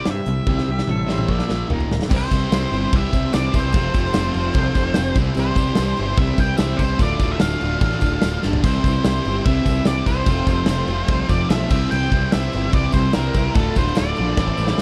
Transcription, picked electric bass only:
0.08 0.20 G2 medium
0.27 0.39 C2 medium
0.47 0.60 C2 medium
0.68 0.81 C2 medium
0.87 1.28 A1 medium
1.28 1.41 A#1 medium
1.50 1.63 A#1 medium
1.70 1.83 D#1 medium
1.89 2.03 D1 medium
2.11 2.24 C2 loud
2.31 2.45 C2 medium
2.51 2.65 C2 medium
2.72 2.85 G1 medium
2.92 3.06 C2 medium
3.13 3.27 C2 medium
3.34 3.47 C2 medium
3.54 3.76 C2 medium
3.74 3.88 F1 loud
3.94 4.08 F1 medium
4.16 4.29 F1 medium
4.35 4.49 F1 medium
4.54 4.68 C2 medium
4.75 4.89 F1 loud
4.97 5.11 F1 medium
5.16 5.30 C2 medium
5.37 5.50 C2 loud
5.55 5.70 C2 medium
5.79 5.92 C2 loud
5.99 6.13 G1 medium
6.18 6.32 C2 medium
6.38 6.52 C2 medium
6.59 6.73 C2 medium
6.79 6.93 C2 medium
6.99 7.13 D1 loud
7.20 7.34 D1 medium
7.41 7.55 D1 loud
7.62 7.76 D1 medium
7.82 7.96 A1 loud
8.02 8.16 D1 medium
8.24 8.37 D1 medium
8.45 8.58 G1 medium
8.63 8.77 C2 medium
8.84 8.98 C2 medium
9.05 9.19 C2 medium
9.26 9.39 G1 medium
9.46 9.59 C2 medium
9.66 9.80 C2 medium
9.87 10.01 C2 medium
10.07 10.21 C2 medium
10.27 10.41 F1 medium
10.47 10.61 F1 medium
10.67 10.81 F1 medium
10.87 11.02 F1 medium
11.09 11.23 C2 loud
11.29 11.43 F1 loud
11.50 11.64 B1 medium
11.70 11.84 C2 medium
11.92 12.06 C2 loud
12.12 12.25 C2 medium
12.35 12.48 C2 medium
12.54 12.67 G1 medium
12.73 12.87 C2 loud
12.93 13.07 C2 loud
13.16 13.29 C2 medium
13.35 13.49 C2 medium
13.56 13.69 D1 loud
13.77 13.90 D1 medium
13.99 14.12 D1 loud
14.19 14.32 A#1 medium
14.38 14.51 A1 medium
14.58 14.72 A1 medium
14.79 14.82 A1 medium

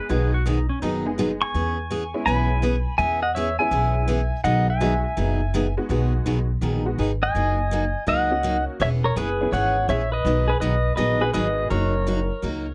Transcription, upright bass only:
0.10 0.68 B1 medium
0.82 1.40 F#1 medium
1.54 2.12 E2 medium
2.26 2.84 B1 medium
2.98 3.57 E2 medium
3.71 4.30 B1 medium
4.44 5.02 B1 medium
5.17 5.75 F#1 medium
5.89 6.18 B1 medium
6.26 6.57 B1 medium
6.61 6.92 A#1 medium
6.98 7.29 G#1 medium
7.35 7.93 F#1 medium
8.07 8.65 C#2 medium
8.80 9.09 E1 medium
9.16 9.47 F#1 medium
9.52 9.83 G#1 medium
9.88 10.19 A#1 medium
10.25 10.54 B1 loud
10.61 10.92 B1 medium
10.98 11.28 A#1 medium
11.34 11.65 G#1 medium
11.70 12.28 F#1 medium
12.43 12.74 C#2 medium

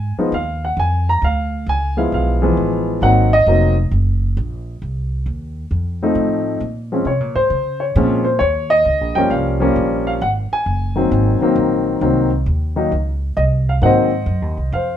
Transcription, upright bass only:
0.00 0.15 G#2 medium
0.17 muted upright bass stroke soft
0.32 0.76 D#2 medium
0.77 1.21 F2 medium
1.22 1.66 D2 medium
1.66 2.11 C#2 medium
2.12 2.56 B1 medium
2.57 3.01 A1 medium
3.02 3.46 G#1 medium
3.46 3.90 F1 medium
3.91 4.35 F#1 medium
4.37 4.81 A#1 medium
4.82 5.25 C2 medium
5.26 5.70 D#2 medium
5.71 6.14 F2 medium
6.15 6.59 A2 medium
6.60 7.04 A#2 medium
7.05 7.20 C3 medium
7.20 7.35 A#2 soft
7.35 7.50 G#2 medium
7.50 7.94 C#3 medium
7.96 8.40 A#2 medium
8.40 8.85 D#2 medium
8.85 9.01 C#2 medium
9.01 9.15 A#1 medium
9.16 9.30 G1 medium
9.31 9.75 C2 medium
9.76 10.20 A#1 medium
10.21 10.49 G#1 medium
10.52 muted upright bass stroke soft
10.66 11.10 F#1 medium
11.11 11.40 G#1 medium
11.41 muted upright bass stroke soft
11.56 12.00 A#1 medium
12.01 12.45 C2 medium
12.46 12.90 D#2 medium
12.92 13.36 C#2 medium
13.37 13.81 C2 medium
13.82 14.26 G#2 medium
14.26 14.42 F#2 medium
14.42 14.57 D#2 soft
14.57 14.71 C2 medium
14.72 14.97 F2 medium

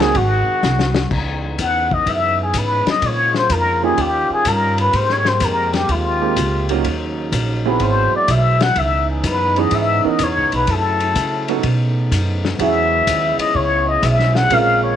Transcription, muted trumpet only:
0.02 0.19 G#4 loud
0.17 1.12 F#4 loud
1.61 1.95 F#5 loud
1.94 2.11 D#5 loud
2.10 2.41 E5 loud
2.43 2.60 G#4 medium
2.58 2.89 B4 medium
2.90 3.08 D#5 loud
3.07 3.37 C#5 loud
3.37 3.54 C5 loud
3.52 3.84 A#4 medium
3.84 4.03 G#4 medium
4.01 4.32 G4 loud
4.33 4.50 G#4 loud
4.48 4.79 A#4 medium
4.80 4.97 B4 loud
4.96 5.14 C5 loud
5.12 5.29 C#5 loud
5.27 5.46 C5 loud
5.44 5.74 A#4 medium
5.75 5.93 G4 medium
5.91 6.71 F4 medium
7.67 7.85 B4 medium
7.83 8.15 C5 loud
8.16 8.33 D5 loud
8.32 8.64 E5 medium
8.63 8.80 F#5 loud
8.79 9.10 E5 loud
9.11 9.27 G#4 medium
9.27 9.61 B4 medium
9.59 9.76 D#5 medium
9.75 10.09 E5 loud
10.08 10.25 D#5 medium
10.24 10.55 C#5 medium
10.55 10.73 B4 medium
10.71 11.50 A4 medium
12.62 13.37 E5 loud
13.40 13.58 D#5 loud
13.56 13.88 C#5 loud
13.89 14.07 D#5 loud
14.05 14.38 E5 loud
14.36 14.55 F#5 loud
14.54 14.83 F5 loud
14.84 14.96 C#5 loud

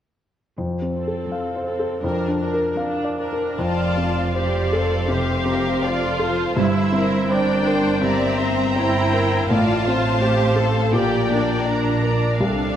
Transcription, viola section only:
0.94 1.65 C4 soft
0.94 1.65 A4 soft
1.66 2.02 C4 soft
1.66 2.02 A4 soft
2.02 2.38 D4 soft
2.02 2.38 A#4 soft
2.40 2.77 D4 soft
2.40 2.77 A#4 soft
2.78 3.17 D4 medium
3.19 3.58 D4 soft
3.19 3.58 A#4 soft
3.60 4.36 F4 soft
4.36 4.72 G4 soft
4.74 5.10 A4 soft
5.09 5.82 G4 medium
5.84 6.58 F4 medium
6.58 7.29 E4 medium
7.31 8.03 D4 medium
8.02 8.76 C4 medium
8.77 9.51 E4 medium
9.51 10.21 F4 medium
10.21 10.57 G4 medium
10.58 10.94 A4 medium
10.93 11.29 G4 medium
11.31 12.40 D4 soft
12.41 12.76 D4 medium

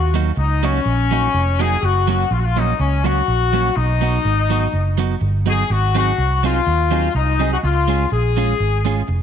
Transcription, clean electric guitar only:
0.14 0.30 F#3 medium
0.14 0.31 A#3 medium
0.14 0.31 D#4 medium
0.14 0.31 F#4 medium
0.36 muted clean electric guitar stroke soft
0.63 0.79 F#3 medium
0.63 0.79 A#3 medium
0.63 0.79 D#4 medium
0.63 0.80 F#4 medium
0.85 muted clean electric guitar stroke soft
1.11 1.27 F#3 medium
1.11 1.27 A#3 medium
1.11 1.28 D#4 medium
1.11 1.28 F#4 medium
1.34 muted clean electric guitar stroke soft
1.59 1.75 F#3 medium
1.59 1.76 A#3 medium
1.59 1.76 D#4 loud
1.59 1.76 F#4 loud
2.07 2.24 F#3 medium
2.07 2.24 A#3 medium
2.07 2.24 C#4 medium
2.07 2.25 F#4 loud
2.30 muted clean electric guitar stroke soft
2.56 2.72 F#3 medium
2.56 2.72 A#3 medium
2.56 2.73 C#4 medium
2.56 2.73 F#4 medium
2.79 muted clean electric guitar stroke soft
3.04 3.20 F#3 medium
3.04 3.21 A#3 medium
3.04 3.21 C#4 medium
3.04 3.21 F#4 loud
3.26 muted clean electric guitar stroke soft
3.53 3.69 F#3 medium
3.53 3.69 A#3 medium
3.53 3.69 C#4 medium
3.53 3.70 F#4 loud
4.01 4.17 F#3 medium
4.01 4.18 B3 medium
4.01 4.18 D#4 medium
4.01 4.18 F#4 medium
4.24 muted clean electric guitar stroke soft
4.50 4.66 F#3 medium
4.50 4.66 B3 medium
4.50 4.66 D#4 medium
4.50 4.67 F#4 medium
4.72 muted clean electric guitar stroke soft
4.98 5.14 F#3 medium
4.98 5.14 B3 medium
4.98 5.15 D#4 medium
4.98 5.15 F#4 medium
5.20 muted clean electric guitar stroke soft
5.46 5.62 F#3 medium
5.46 5.62 B3 medium
5.46 5.63 D#4 medium
5.46 5.63 F#4 medium
5.95 6.11 F#3 medium
5.95 6.11 C4 medium
5.95 6.11 D#4 loud
5.95 6.12 G#4 medium
6.17 muted clean electric guitar stroke soft
6.43 6.59 F#3 medium
6.43 6.60 C4 medium
6.43 6.60 D#4 medium
6.43 6.60 G#4 medium
6.66 muted clean electric guitar stroke soft
6.91 7.07 F#3 medium
6.91 7.07 C4 medium
6.91 7.08 D#4 loud
6.91 7.08 G#4 medium
7.13 muted clean electric guitar stroke soft
7.39 7.56 F#3 medium
7.39 7.56 C4 medium
7.39 7.56 D#4 medium
7.39 7.57 G#4 medium
7.88 8.04 G#3 medium
7.88 8.04 C#4 medium
7.88 8.05 F4 medium
7.88 8.05 G#4 medium
8.11 muted clean electric guitar stroke medium
8.37 8.53 G#3 medium
8.37 8.53 C#4 medium
8.37 8.53 F4 medium
8.37 8.53 G#4 medium
8.59 muted clean electric guitar stroke soft
8.85 9.01 G#3 medium
8.85 9.01 C#4 medium
8.85 9.02 F4 medium
8.85 9.02 G#4 medium
9.07 muted clean electric guitar stroke soft

